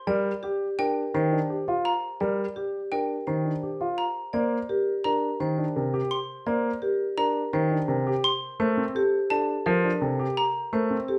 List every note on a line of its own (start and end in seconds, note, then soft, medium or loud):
0.07 0.31 G3 medium
0.07 0.31 A#4 medium
0.07 0.31 D5 medium
0.43 0.66 G4 medium
0.79 1.02 D4 medium
0.79 1.02 A#4 medium
0.79 1.02 G5 medium
1.14 1.37 D#3 medium
1.14 1.37 C5 medium
1.32 1.55 D4 soft
1.50 1.73 G4 soft
1.68 1.91 F4 medium
1.85 2.08 A#5 soft
2.20 2.44 G3 medium
2.20 2.44 A#4 medium
2.20 2.44 D5 medium
2.56 2.79 G4 soft
2.92 3.15 D4 soft
2.92 3.15 A#4 soft
2.92 3.15 G5 soft
3.27 3.50 D#3 medium
3.27 3.50 C5 medium
3.45 3.68 D4 soft
3.63 3.86 G4 soft
3.81 4.04 F4 medium
3.98 4.21 A#5 soft
4.33 4.57 A#3 medium
4.33 4.57 C5 medium
4.33 4.57 D5 medium
4.69 4.92 G4 soft
4.69 4.92 A#4 soft
5.04 5.28 D4 soft
5.04 5.28 A#4 medium
5.04 5.28 A#5 soft
5.40 5.63 D#3 medium
5.40 5.63 C5 medium
5.58 5.81 D4 soft
5.76 5.99 C3 soft
5.76 5.99 A#4 soft
5.94 6.17 G4 medium
6.11 6.34 C6 soft
6.47 6.70 A#3 medium
6.47 6.70 C5 medium
6.47 6.70 D5 medium
6.82 7.05 G4 soft
6.82 7.05 A#4 soft
7.17 7.41 D4 medium
7.17 7.41 A#4 medium
7.17 7.41 A#5 medium
7.53 7.76 D#3 medium
7.53 7.76 C5 medium
7.71 7.94 D4 soft
7.88 8.12 C3 medium
7.88 8.12 A#4 soft
8.07 8.30 G4 medium
8.24 8.47 C6 medium
8.60 8.83 A3 medium
8.60 8.83 A#4 medium
8.60 8.83 C5 medium
8.77 9.01 C4 medium
8.95 9.19 G4 medium
8.95 9.18 A4 medium
9.30 9.54 D4 medium
9.30 9.54 A4 medium
9.30 9.54 A5 medium
9.66 9.89 F3 medium
9.66 9.89 A#4 medium
9.84 10.07 D4 soft
10.01 10.25 C3 soft
10.01 10.25 A4 medium
10.19 10.43 G4 medium
10.37 10.60 A#5 medium
10.73 10.96 A3 medium
10.73 10.96 A#4 medium
10.73 10.96 C5 medium
10.90 11.14 C4 medium
11.08 11.19 G4 soft
11.08 11.19 A4 soft